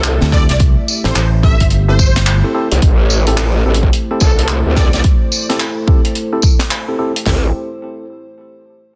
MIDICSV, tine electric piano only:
0, 0, Header, 1, 2, 480
1, 0, Start_track
1, 0, Key_signature, 0, "minor"
1, 0, Tempo, 555556
1, 519, Time_signature, 4, 2, 24, 8
1, 7736, End_track
2, 0, Start_track
2, 0, Title_t, "Tine electric piano"
2, 0, Program_c, 0, 4
2, 186, Note_on_c, 0, 60, 77
2, 186, Note_on_c, 0, 64, 71
2, 186, Note_on_c, 0, 67, 74
2, 186, Note_on_c, 0, 69, 87
2, 253, Note_off_c, 0, 64, 0
2, 254, Note_off_c, 0, 60, 0
2, 254, Note_off_c, 0, 67, 0
2, 254, Note_off_c, 0, 69, 0
2, 278, Note_on_c, 0, 64, 82
2, 278, Note_on_c, 0, 67, 81
2, 278, Note_on_c, 0, 69, 96
2, 279, Note_on_c, 0, 60, 89
2, 389, Note_off_c, 0, 60, 0
2, 389, Note_off_c, 0, 64, 0
2, 389, Note_off_c, 0, 67, 0
2, 389, Note_off_c, 0, 69, 0
2, 908, Note_on_c, 0, 64, 91
2, 908, Note_on_c, 0, 67, 94
2, 908, Note_on_c, 0, 69, 112
2, 909, Note_on_c, 0, 60, 96
2, 1025, Note_off_c, 0, 60, 0
2, 1025, Note_off_c, 0, 64, 0
2, 1025, Note_off_c, 0, 67, 0
2, 1025, Note_off_c, 0, 69, 0
2, 1236, Note_on_c, 0, 69, 104
2, 1237, Note_on_c, 0, 60, 92
2, 1237, Note_on_c, 0, 64, 81
2, 1238, Note_on_c, 0, 67, 88
2, 1348, Note_off_c, 0, 60, 0
2, 1348, Note_off_c, 0, 64, 0
2, 1348, Note_off_c, 0, 69, 0
2, 1349, Note_off_c, 0, 67, 0
2, 1628, Note_on_c, 0, 60, 90
2, 1628, Note_on_c, 0, 64, 87
2, 1628, Note_on_c, 0, 67, 85
2, 1629, Note_on_c, 0, 69, 101
2, 1695, Note_off_c, 0, 60, 0
2, 1695, Note_off_c, 0, 64, 0
2, 1695, Note_off_c, 0, 67, 0
2, 1695, Note_off_c, 0, 69, 0
2, 2110, Note_on_c, 0, 64, 70
2, 2110, Note_on_c, 0, 69, 90
2, 2111, Note_on_c, 0, 60, 79
2, 2111, Note_on_c, 0, 67, 70
2, 2176, Note_off_c, 0, 60, 0
2, 2176, Note_off_c, 0, 64, 0
2, 2176, Note_off_c, 0, 67, 0
2, 2176, Note_off_c, 0, 69, 0
2, 2199, Note_on_c, 0, 60, 89
2, 2199, Note_on_c, 0, 67, 79
2, 2199, Note_on_c, 0, 69, 100
2, 2200, Note_on_c, 0, 64, 84
2, 2309, Note_off_c, 0, 60, 0
2, 2310, Note_off_c, 0, 64, 0
2, 2310, Note_off_c, 0, 67, 0
2, 2310, Note_off_c, 0, 69, 0
2, 2830, Note_on_c, 0, 60, 99
2, 2830, Note_on_c, 0, 69, 114
2, 2831, Note_on_c, 0, 64, 92
2, 2831, Note_on_c, 0, 67, 91
2, 2946, Note_off_c, 0, 60, 0
2, 2946, Note_off_c, 0, 64, 0
2, 2946, Note_off_c, 0, 67, 0
2, 2946, Note_off_c, 0, 69, 0
2, 3160, Note_on_c, 0, 64, 79
2, 3161, Note_on_c, 0, 60, 90
2, 3161, Note_on_c, 0, 67, 80
2, 3161, Note_on_c, 0, 69, 100
2, 3270, Note_off_c, 0, 60, 0
2, 3270, Note_off_c, 0, 64, 0
2, 3270, Note_off_c, 0, 67, 0
2, 3271, Note_off_c, 0, 69, 0
2, 3550, Note_on_c, 0, 60, 94
2, 3550, Note_on_c, 0, 67, 78
2, 3550, Note_on_c, 0, 69, 102
2, 3551, Note_on_c, 0, 64, 83
2, 3616, Note_off_c, 0, 60, 0
2, 3616, Note_off_c, 0, 64, 0
2, 3616, Note_off_c, 0, 67, 0
2, 3616, Note_off_c, 0, 69, 0
2, 4026, Note_on_c, 0, 64, 70
2, 4027, Note_on_c, 0, 60, 80
2, 4027, Note_on_c, 0, 67, 72
2, 4027, Note_on_c, 0, 69, 80
2, 4094, Note_off_c, 0, 60, 0
2, 4094, Note_off_c, 0, 64, 0
2, 4094, Note_off_c, 0, 67, 0
2, 4094, Note_off_c, 0, 69, 0
2, 4116, Note_on_c, 0, 64, 76
2, 4117, Note_on_c, 0, 60, 89
2, 4117, Note_on_c, 0, 67, 81
2, 4117, Note_on_c, 0, 69, 97
2, 4228, Note_off_c, 0, 60, 0
2, 4228, Note_off_c, 0, 64, 0
2, 4228, Note_off_c, 0, 69, 0
2, 4229, Note_off_c, 0, 67, 0
2, 4747, Note_on_c, 0, 64, 89
2, 4747, Note_on_c, 0, 67, 91
2, 4747, Note_on_c, 0, 69, 105
2, 4748, Note_on_c, 0, 60, 95
2, 4864, Note_off_c, 0, 64, 0
2, 4864, Note_off_c, 0, 67, 0
2, 4864, Note_off_c, 0, 69, 0
2, 4865, Note_off_c, 0, 60, 0
2, 5076, Note_on_c, 0, 60, 91
2, 5076, Note_on_c, 0, 64, 84
2, 5076, Note_on_c, 0, 69, 96
2, 5077, Note_on_c, 0, 67, 84
2, 5188, Note_off_c, 0, 60, 0
2, 5188, Note_off_c, 0, 64, 0
2, 5188, Note_off_c, 0, 67, 0
2, 5188, Note_off_c, 0, 69, 0
2, 5466, Note_on_c, 0, 60, 90
2, 5466, Note_on_c, 0, 67, 81
2, 5466, Note_on_c, 0, 69, 103
2, 5467, Note_on_c, 0, 64, 83
2, 5534, Note_off_c, 0, 60, 0
2, 5534, Note_off_c, 0, 64, 0
2, 5534, Note_off_c, 0, 67, 0
2, 5534, Note_off_c, 0, 69, 0
2, 5945, Note_on_c, 0, 60, 75
2, 5945, Note_on_c, 0, 67, 70
2, 5945, Note_on_c, 0, 69, 89
2, 5946, Note_on_c, 0, 64, 71
2, 6013, Note_off_c, 0, 60, 0
2, 6013, Note_off_c, 0, 67, 0
2, 6013, Note_off_c, 0, 69, 0
2, 6014, Note_off_c, 0, 64, 0
2, 6037, Note_on_c, 0, 60, 85
2, 6037, Note_on_c, 0, 64, 78
2, 6037, Note_on_c, 0, 67, 78
2, 6037, Note_on_c, 0, 69, 94
2, 6148, Note_off_c, 0, 60, 0
2, 6148, Note_off_c, 0, 67, 0
2, 6148, Note_off_c, 0, 69, 0
2, 6149, Note_off_c, 0, 64, 0
2, 6278, Note_on_c, 0, 60, 86
2, 6279, Note_on_c, 0, 64, 75
2, 6279, Note_on_c, 0, 67, 77
2, 6279, Note_on_c, 0, 69, 92
2, 6468, Note_off_c, 0, 60, 0
2, 6469, Note_off_c, 0, 64, 0
2, 6469, Note_off_c, 0, 67, 0
2, 6469, Note_off_c, 0, 69, 0
2, 7736, End_track
0, 0, End_of_file